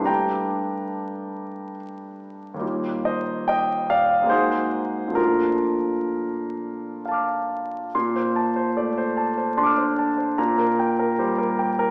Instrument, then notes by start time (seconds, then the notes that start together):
grand piano
Already playing: C3 A#3 D4 E4 C5 E5 G5 G#5 A#5 C6
0.00 G2 G3 A3
0.04 D4 G4 G5 A#5
2.54 D#2 G3 A#3
2.59 D#4 F4
3.05 C5 D#5
3.48 D#5 G5
3.90 D5 F5
4.22 G#2 G#3 A#3
4.28 D#4 F#4 G#4 C5
5.08 A#2 F3 A3
5.14 D4 F4 A#4
7.05 F5 A5
7.11 D6 F6
7.95 A#2 C6
8.16 C5
8.36 A5
8.56 C5
8.77 A3 D5
8.98 C5
9.17 A5
9.37 C5
9.57 D4 A5 C6
9.63 D6 F6
9.78 C5
9.99 A5
10.18 C5
10.38 A#2 A#5
10.58 A#4
10.79 G5
10.99 A#4
11.19 G3 C5
11.38 A#4
11.59 G5
11.79 A#4